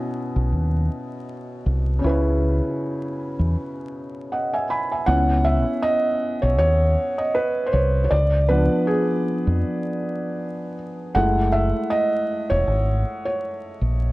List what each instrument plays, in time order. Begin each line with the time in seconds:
Already playing: felt piano B2 C#4 E4 B4 D#5 E5 G#5
0.36 fingered electric bass B1
0.52 fingered electric bass D#2
1.66 fingered electric bass C2
1.99 felt piano C#3 C#4
2.04 fingered electric bass C#2, felt piano E4 B4
2.09 felt piano C#5
3.39 fingered electric bass E2
4.32 felt piano D#5 F#5
4.53 felt piano E5 G#5
4.70 felt piano G#5 B5
4.92 felt piano E5 G#5
5.06 fingered electric bass C#2, felt piano B3 C#4 E4 F#5
5.45 felt piano E5
5.82 felt piano D#5
6.42 fingered electric bass B1, felt piano C#5
6.58 fingered electric bass D#2, felt piano C#5
7.18 felt piano D#5
7.35 felt piano B4
7.66 felt piano C5
7.73 fingered electric bass C2, felt piano C#5
8.04 felt piano C#5
8.11 fingered electric bass C#2, felt piano D5
8.49 felt piano F3 B3 D4 B4
8.87 felt piano G#4
9.47 fingered electric bass F2
11.15 fingered electric bass F#1, felt piano G#3 A3 E4 F#5
11.52 felt piano E5
11.90 felt piano D#5
12.50 fingered electric bass E1, felt piano C#5
12.67 fingered electric bass G#1
13.25 felt piano C#5
13.81 fingered electric bass A#1